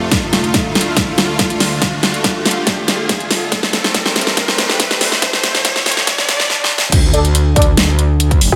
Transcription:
Already playing: supersaw synth A3 F4, riser
0.11 supersaw synth D2 D3, kick, snare, closed hi-hat
0.33 snare, closed hi-hat
0.44 closed hi-hat
0.54 kick, snare, closed hi-hat
0.75 snare, closed hi-hat
0.81 closed hi-hat
0.97 kick, snare, closed hi-hat
1.18 snare, closed hi-hat
1.39 kick, snare, closed hi-hat
1.50 closed hi-hat
1.60 snare, open hi-hat
1.82 kick, snare, closed hi-hat
2.03 snare, closed hi-hat
2.14 closed hi-hat
2.24 kick, snare, closed hi-hat
2.45 snare, open hi-hat
2.51 closed hi-hat
2.67 kick, snare, closed hi-hat
2.88 snare, closed hi-hat
3.09 kick, snare, closed hi-hat
3.20 closed hi-hat
3.31 snare, open hi-hat
3.52 supersaw synth E2 G3 A3 C4, kick, snare, closed hi-hat
3.63 snare
3.73 snare, closed hi-hat
3.84 snare, closed hi-hat
3.94 kick, snare, closed hi-hat
4.06 snare
4.16 snare, closed hi-hat
4.21 closed hi-hat
4.27 snare
4.37 kick, snare, closed hi-hat
4.48 snare
4.58 snare, closed hi-hat
4.69 snare
4.80 kick, snare, closed hi-hat
4.91 snare, closed hi-hat
5.01 snare, open hi-hat
5.12 snare
5.22 supersaw synth F2 F3, kick, snare, closed hi-hat
5.33 snare
5.43 snare, closed hi-hat
5.55 snare, closed hi-hat
5.65 kick, snare, closed hi-hat
5.76 snare
5.86 snare, open hi-hat
5.92 closed hi-hat
5.97 snare
6.07 kick, snare, closed hi-hat, swell
6.18 snare
6.29 snare, closed hi-hat
6.40 snare
6.50 snare
6.64 snare
6.78 snare
6.92 wobble bass D2, kick, closed hi-hat, crash
7.14 wobble bass D2, brass ensemble D4 A4 D5, closed hi-hat
7.25 closed hi-hat
7.35 closed hi-hat
7.56 wobble bass D2, brass ensemble D4 A4 D5, kick, closed hi-hat
7.62 closed hi-hat
7.77 wobble bass D2, snare, closed hi-hat
7.99 closed hi-hat
8.20 closed hi-hat
8.31 kick, closed hi-hat
8.41 wobble bass F1, open hi-hat
8.52 wobble bass D2

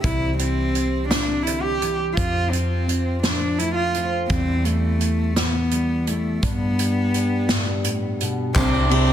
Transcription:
0.02 fingered electric bass C2, steel-string acoustic guitar C3 E3 G3 C4, cello E4, kick, closed hi-hat
0.38 cello C4, steel-string acoustic guitar E4, closed hi-hat
0.75 steel-string acoustic guitar C4, closed hi-hat
1.09 steel-string acoustic guitar C3, cello D4, snare, closed hi-hat
1.43 steel-string acoustic guitar D3, cello E4, closed hi-hat
1.62 cello G4
1.82 steel-string acoustic guitar E3, closed hi-hat
2.15 steel-string acoustic guitar F2 C4, fingered electric bass F2, cello F4, kick, closed hi-hat
2.51 cello C4, steel-string acoustic guitar F4, closed hi-hat
2.88 steel-string acoustic guitar C4, closed hi-hat
3.23 steel-string acoustic guitar F3, cello D4, snare, closed hi-hat
3.59 steel-string acoustic guitar A3, cello E4, closed hi-hat
3.75 cello F4
3.94 steel-string acoustic guitar C4, closed hi-hat
4.29 steel-string acoustic guitar E2 E3 G3 E4, fingered electric bass E2, cello C4, kick, closed hi-hat
4.65 cello A3, steel-string acoustic guitar E4, closed hi-hat
5.01 steel-string acoustic guitar E4, closed hi-hat
5.36 steel-string acoustic guitar E3, cello B3, snare, closed hi-hat
5.71 steel-string acoustic guitar G3, closed hi-hat
6.07 cello A3, steel-string acoustic guitar E4, closed hi-hat
6.43 fingered electric bass G2, steel-string acoustic guitar G2 D4, cello B3, kick, closed hi-hat
6.79 steel-string acoustic guitar G4, closed hi-hat
7.14 steel-string acoustic guitar D4, closed hi-hat
7.49 steel-string acoustic guitar G2, snare, closed hi-hat
7.84 steel-string acoustic guitar A2, closed hi-hat
8.21 steel-string acoustic guitar B2, closed hi-hat
8.55 fingered electric bass C2, upright piano C2 C3 G3 C4 D4 E4 C5, twelve-string acoustic guitar C3 E3 G3 D4 E4 C5, trombone C3, cello C4, mandolin D4, kick, clap, ride, tambourine
8.73 twelve-string acoustic guitar G3 D4 E4 C5, tambourine
8.89 trombone C3, twelve-string acoustic guitar G3 D4 E4, cello C4, clap, ride
8.94 twelve-string acoustic guitar C5
9.07 clap

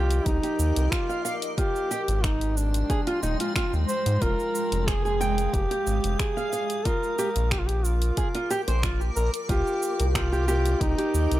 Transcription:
Already playing: analog synth bass C2, singing bowl F3 F4, duduk F4, nylon-string guitar G4, ambient pad A#4 D#5 D6
0.11 closed hi-hat, cabasa
0.25 analog synth bass C2, duduk D#4, kick, closed hi-hat, cabasa
0.43 nylon-string guitar G4, closed hi-hat, cabasa
0.59 analog synth bass D#2, cabasa
0.76 analog synth bass C2, closed hi-hat, cabasa
0.92 duduk F4, finger snap, kick, closed hi-hat, cabasa
1.09 nylon-string guitar F5, cabasa
1.25 nylon-string guitar F5, cabasa
1.42 closed hi-hat, cabasa
1.58 ambient pad G#3 G5 C6, nylon-string guitar F4, duduk G4, kick, closed hi-hat, cabasa
1.76 cabasa
1.91 nylon-string guitar G4, cabasa
2.08 analog synth bass G#1, closed hi-hat, cabasa
2.24 duduk D#4, finger snap, kick, closed hi-hat, cabasa
2.41 closed hi-hat, cabasa
2.57 duduk D4, cabasa
2.74 closed hi-hat, cabasa
2.90 nylon-string guitar G#4, kick, closed hi-hat, cabasa
3.07 nylon-string guitar F4, closed hi-hat, cabasa
3.23 analog synth bass D#1, nylon-string guitar D#4, cabasa
3.40 nylon-string guitar F4, closed hi-hat, cabasa
3.56 nylon-string guitar F4, finger snap, kick, closed hi-hat, cabasa
3.73 analog synth bass D#2, cabasa
3.88 duduk C5, cabasa
4.06 analog synth bass G#2, closed hi-hat, cabasa
4.21 analog synth bass F1, nylon-string guitar F4, duduk A#4, ambient pad F5 D#6, kick, closed hi-hat, cabasa
4.40 cabasa
4.55 cabasa
4.72 analog synth bass F1, closed hi-hat, cabasa
4.88 nylon-string guitar G#4, duduk G#4, finger snap, kick, closed hi-hat, cabasa
5.05 nylon-string guitar G#4, cabasa
5.21 nylon-string guitar G5, cabasa
5.38 closed hi-hat, cabasa
5.54 analog synth bass F1, duduk G4, kick, closed hi-hat, cabasa
5.71 nylon-string guitar G4, closed hi-hat, cabasa
5.87 analog synth bass G#1, cabasa
6.04 analog synth bass F1, closed hi-hat, cabasa
6.19 duduk G#4, finger snap, kick, closed hi-hat, cabasa
6.37 nylon-string guitar F5, cabasa
6.53 nylon-string guitar F5, cabasa
6.70 closed hi-hat, cabasa
6.85 nylon-string guitar F4, duduk A#4, ambient pad A#4 D6, kick, closed hi-hat, cabasa
7.03 cabasa
7.19 nylon-string guitar G4, cabasa
7.36 analog synth bass A#1, closed hi-hat, cabasa
7.51 duduk G4, finger snap, kick, closed hi-hat, cabasa
7.59 duduk F4
7.67 duduk G4, closed hi-hat, cabasa
7.85 duduk F4, cabasa
8.02 closed hi-hat, cabasa
8.17 nylon-string guitar G#4, kick, closed hi-hat, cabasa
8.35 nylon-string guitar F4, closed hi-hat, cabasa
8.50 nylon-string guitar G4, cabasa
8.68 analog synth bass A#1, nylon-string guitar C5, closed hi-hat, cabasa
8.83 nylon-string guitar F4, finger snap, kick, closed hi-hat, cabasa
9.01 cabasa
9.16 analog synth bass A#1, duduk A#4, cabasa
9.34 closed hi-hat, cabasa
9.49 analog synth bass C2, nylon-string guitar F4, duduk G4, ambient pad D#5, kick, closed hi-hat, cabasa
9.67 cabasa
9.83 cabasa
10.00 analog synth bass C2, closed hi-hat, cabasa
10.09 duduk G4
10.15 duduk F4, nylon-string guitar G4, finger snap, kick, closed hi-hat, cabasa
10.32 nylon-string guitar G4, cabasa
10.48 nylon-string guitar G4, cabasa
10.66 closed hi-hat, cabasa
10.81 analog synth bass C2, duduk D#4, kick, closed hi-hat, cabasa
10.98 nylon-string guitar G4, closed hi-hat, cabasa
11.14 analog synth bass D#2, cabasa
11.31 analog synth bass C2, closed hi-hat, cabasa

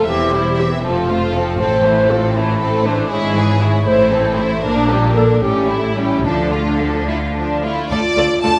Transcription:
0.06 double bass section E1, cello section E2, viola section E3, violin section C4 E5, flute G4
0.32 viola section G3, violin section E4 C5
0.58 viola section E3, violin section C4 E5, flute G4
0.83 double bass section F1, cello section F2, viola section F3, violin section C4 A4, flute F4
1.09 viola section A3, violin section F4 C5
1.34 viola section F3, violin section C4 A4
1.59 double bass section A1, cello section A2, viola section A3, violin section C4 A4, flute C5
1.85 viola section E3, violin section A3 C5
2.10 viola section A3, violin section C4 A4, flute F4
2.34 viola section E3, violin section A3 C5, flute E4
2.60 viola section A3, violin section C4 A4
2.85 viola section E3, violin section A3 C5, flute D4
3.10 double bass section G#1, cello section G#2, viola section G#3, violin section E4 G#4, flute C#5
3.35 viola section E3, violin section G#4 B4
3.60 viola section G#3, violin section E4 G#4, flute C#5
3.86 double bass section A1, cello section A2, viola section A3, violin section E4 C5, flute C5
4.11 viola section E3, violin section C4 A4
4.37 viola section A3, violin section E4 C5
4.63 double bass section A#1, cello section A#2, viola section A#3, flute D4, violin section D4 A#4
4.89 viola section G3, violin section A#3 G4
5.15 viola section A#3, violin section D4 A#4, flute A4
5.42 double bass section A1, cello section A2, viola section G3, violin section C#4 G4, flute G4
5.69 viola section A3, violin section E4
5.97 viola section G3, violin section C#4 G4, flute E4
6.24 double bass section D2, cello section D3, viola section F3, flute D4, violin section D4 A4
6.52 viola section A3, violin section F4
6.80 viola section F3, violin section D4 A4
7.09 viola section A3, violin section E4 F4
7.36 viola section F3, violin section D4
7.64 viola section A3, violin section E4 F4
7.91 cello section D2, double bass section D2, viola section A3 F4, french horn section F4, violin section A4 D5
8.17 cello section D2, double bass section D2, viola section A3 F4, violin section A4 D5
8.43 cello section D2, double bass section D2, viola section A3 F4, violin section A4 D5 A5

